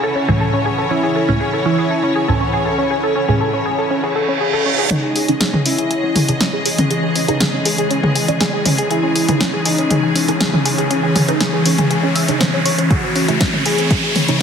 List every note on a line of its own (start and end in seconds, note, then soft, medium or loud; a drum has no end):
0.00 4.87 C#3 medium
0.00 4.87 E3 medium
0.00 4.87 C#4 medium
0.00 6.52 C#4 medium
0.00 4.87 E4 medium
0.00 0.13 A4 loud
0.00 4.87 C#5 medium
0.00 12.91 C#5 medium
0.00 6.11 F#5 medium
0.00 5.67 G#5 medium
0.15 0.26 C#4 medium
0.28 1.25 C#2 medium
0.28 1.25 A2 medium
0.28 1.25 E3 medium
0.28 1.25 C#4 medium
0.28 0.38 G#4 medium
0.41 0.51 A4 loud
0.53 0.63 C#4 loud
0.66 0.76 G#4 loud
0.78 0.88 A4 loud
0.91 1.56 E3 loud
0.91 1.01 C#4 loud
0.91 1.56 E4 loud
1.03 1.13 G#4 loud
1.16 1.26 A4 loud
1.28 1.41 C#2 medium
1.28 1.41 A2 medium
1.28 1.41 E3 medium
1.28 1.38 C#4 loud
1.28 1.41 C#4 loud
1.41 1.51 G#4 loud
1.53 1.63 A4 loud
1.66 2.31 E3 medium
1.66 1.76 C#4 loud
1.66 2.31 E4 loud
1.78 1.88 G#4 loud
1.91 2.01 A4 loud
2.03 2.13 C#4 loud
2.16 2.26 G#4 loud
2.28 3.25 C#2 medium
2.28 3.25 A2 medium
2.28 3.25 E3 medium
2.28 3.25 C#4 medium
2.28 2.38 A4 loud
2.41 2.51 C#4 loud
2.53 2.63 G#4 loud
2.66 2.76 A4 loud
2.78 2.88 C#4 loud
2.91 3.01 G#4 loud
3.03 3.13 A4 loud
3.16 3.26 C#4 loud
3.28 3.41 C#2 loud
3.28 3.41 A2 medium
3.28 3.41 E3 medium
3.28 3.41 C#4 loud
3.28 3.38 G#4 loud
3.41 3.51 A4 medium
3.53 3.63 C#4 loud
3.66 3.76 G#4 loud
3.79 3.88 A4 loud
3.91 4.01 C#4 loud
3.91 reverse cymbal medium
4.04 4.13 G#4 loud
4.16 4.26 A4 loud
4.28 4.38 C#4 loud
4.41 4.51 G#4 loud
4.53 4.63 A4 loud
4.66 4.76 C#4 loud
4.78 4.88 G#4 loud
4.91 14.42 C#3 medium
4.91 14.42 E3 medium
4.91 12.87 E3 medium
4.91 12.87 G#3 medium
4.91 5.01 C#4 loud
4.91 5.56 D#4 loud
4.91 12.87 G#4 medium
4.91 8.87 D#5 medium
4.91 closed hi-hat medium
4.91 mid tom medium
4.91 riser medium
5.03 5.13 G#4 loud
5.16 5.26 G#4 loud
5.16 9.02 D#5 medium
5.16 open hi-hat loud
5.28 5.41 C#3 loud
5.28 5.41 E3 medium
5.28 5.38 C#4 loud
5.28 5.41 D#4 loud
5.28 closed hi-hat medium
5.41 5.51 G#4 loud
5.41 snare loud
5.41 closed hi-hat medium
5.53 5.63 G#4 loud
5.53 mid tom medium
5.66 5.76 C#4 loud
5.66 6.31 E4 loud
5.66 open hi-hat loud
5.78 5.88 G#4 loud
5.78 closed hi-hat medium
5.91 6.01 G#4 loud
5.91 closed hi-hat medium
6.03 6.13 C#4 loud
6.16 6.26 G#4 medium
6.16 open hi-hat loud
6.16 mid tom medium
6.28 7.25 C#3 medium
6.28 7.25 E3 medium
6.28 7.25 D#4 medium
6.28 6.38 G#4 medium
6.28 closed hi-hat medium
6.41 6.51 C#4 loud
6.41 snare loud
6.41 closed hi-hat medium
6.53 6.63 G#4 loud
6.66 6.76 G#4 loud
6.66 open hi-hat loud
6.78 6.88 C#4 loud
6.78 closed hi-hat medium
6.78 mid tom medium
6.91 7.01 G#4 loud
6.91 closed hi-hat medium
7.03 7.13 G#4 loud
7.16 7.26 C#4 loud
7.16 open hi-hat loud
7.28 7.41 C#3 loud
7.28 7.41 E3 medium
7.28 7.41 D#4 loud
7.28 7.38 G#4 loud
7.28 closed hi-hat medium
7.40 7.51 G#4 loud
7.40 snare loud
7.40 closed hi-hat medium
7.40 mid tom medium
7.53 7.63 C#4 loud
7.65 7.76 G#4 loud
7.65 open hi-hat loud
7.78 7.88 G#4 loud
7.78 closed hi-hat medium
7.91 8.01 C#4 loud
7.91 closed hi-hat medium
8.03 8.13 G#4 loud
8.03 mid tom medium
8.15 8.26 G#4 loud
8.15 open hi-hat loud
8.28 9.25 C#3 medium
8.28 9.25 E3 medium
8.28 8.38 C#4 loud
8.28 9.25 D#5 loud
8.28 closed hi-hat medium
8.41 8.51 G#4 loud
8.41 snare loud
8.41 closed hi-hat medium
8.53 8.63 G#4 loud
8.66 8.76 C#4 loud
8.66 open hi-hat loud
8.66 mid tom medium
8.78 8.88 G#4 loud
8.78 closed hi-hat medium
8.91 12.87 C#4 medium
8.91 9.56 E4 loud
8.91 9.01 G#4 loud
8.91 closed hi-hat medium
9.03 9.13 C#4 loud
9.16 9.26 G#4 loud
9.16 open hi-hat loud
9.28 9.41 C#3 loud
9.28 9.41 E3 medium
9.28 9.41 D#4 loud
9.28 9.38 G#4 loud
9.28 closed hi-hat medium
9.28 mid tom medium
9.41 9.51 C#4 medium
9.41 snare loud
9.41 closed hi-hat medium
9.53 9.63 G#4 loud
9.65 10.31 D#4 loud
9.65 9.76 G#4 loud
9.65 open hi-hat loud
9.78 9.88 C#4 loud
9.78 closed hi-hat medium
9.91 10.01 G#4 loud
9.91 closed hi-hat medium
9.91 mid tom medium
10.03 10.13 G#4 loud
10.15 10.26 C#4 loud
10.15 open hi-hat loud
10.28 11.25 C#3 medium
10.28 11.25 E3 medium
10.28 11.25 D#4 medium
10.28 10.38 G#4 loud
10.28 closed hi-hat medium
10.40 10.51 G#4 loud
10.40 snare loud
10.40 closed hi-hat medium
10.53 10.63 C#4 loud
10.53 mid tom medium
10.65 10.76 G#4 loud
10.65 open hi-hat loud
10.78 10.88 G#4 loud
10.78 closed hi-hat medium
10.91 11.01 C#4 loud
10.91 closed hi-hat medium
11.03 11.13 G#4 loud
11.16 11.26 G#4 loud
11.16 open hi-hat loud
11.16 mid tom medium
11.28 11.41 C#3 loud
11.28 11.41 E3 medium
11.28 11.38 C#4 loud
11.28 11.41 D#4 loud
11.28 closed hi-hat medium
11.41 11.51 G#4 loud
11.41 snare loud
11.41 closed hi-hat medium
11.53 11.63 G#4 loud
11.66 11.76 C#4 loud
11.66 open hi-hat loud
11.78 11.88 G#4 loud
11.78 closed hi-hat medium
11.78 mid tom medium
11.91 12.01 G#4 loud
11.91 closed hi-hat medium
12.03 12.13 C#4 loud
12.15 12.26 E5 loud
12.15 open hi-hat loud
12.28 12.89 C#3 medium
12.28 12.89 E3 medium
12.28 12.34 C#4 medium
12.28 12.89 D#4 medium
12.28 closed hi-hat medium
12.41 12.51 C4 medium
12.41 snare loud
12.41 closed hi-hat soft
12.41 mid tom medium
12.53 12.59 C#4 loud
12.66 12.76 C#5 loud
12.66 open hi-hat loud
12.78 12.88 C#4 loud
12.78 closed hi-hat medium
12.90 14.42 C#3 medium
12.90 14.42 E3 medium
12.90 14.42 A3 medium
12.90 14.42 E4 medium
12.90 13.56 F#4 loud
12.90 13.01 G#4 loud
12.90 14.42 C#5 medium
12.90 kick loud
12.90 closed hi-hat medium
12.90 mid tom medium
13.03 13.13 C4 medium
13.15 13.26 C#4 loud
13.15 open hi-hat loud
13.28 13.41 C#3 loud
13.28 13.41 A3 medium
13.28 13.41 E4 loud
13.28 13.38 G#4 loud
13.28 closed hi-hat medium
13.41 13.51 C4 medium
13.41 kick loud
13.41 snare loud
13.41 closed hi-hat medium
13.53 13.63 C#4 loud
13.53 mid tom medium
13.65 14.42 A3 medium
13.65 13.76 G#4 loud
13.65 14.31 G#4 loud
13.65 open hi-hat loud
13.78 13.88 C4 medium
13.78 closed hi-hat medium
13.91 14.01 C#4 loud
13.91 14.42 C#5 medium
13.91 kick loud
13.91 closed hi-hat medium
14.03 14.13 G#4 loud
14.16 14.26 C4 medium
14.16 open hi-hat loud
14.16 mid tom medium
14.28 14.42 C#3 medium
14.28 14.42 A3 medium
14.28 14.38 C#4 loud
14.28 14.42 E4 medium
14.28 closed hi-hat medium